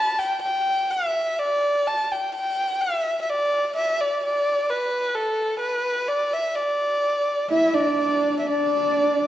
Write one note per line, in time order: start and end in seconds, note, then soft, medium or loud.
0.00 0.20 A5 medium
0.19 0.41 G5 medium
0.42 0.92 G5 medium
0.90 1.41 E5 medium
1.39 1.89 D5 medium
1.87 2.13 A5 medium
2.11 2.34 G5 medium
2.35 2.82 G5 medium
2.81 3.21 E5 medium
3.21 3.31 E5 medium
3.30 3.76 D5 medium
3.76 4.02 E5 medium
4.01 4.23 D5 medium
4.24 4.71 D5 medium
4.69 5.16 B4 medium
5.15 5.59 A4 medium
5.59 6.09 B4 medium
6.08 6.34 D5 medium
6.33 6.56 E5 medium
6.55 7.50 D5 medium
7.50 7.76 E4 medium
7.50 7.73 E5 medium
7.50 7.75 E5 medium
7.74 8.47 D4 medium
7.74 8.39 D5 medium
7.74 8.43 D5 medium
8.39 8.49 E5 soft
8.47 9.27 D4 medium
8.47 9.27 D5 medium
8.47 9.16 D5 medium
9.19 9.27 D5 medium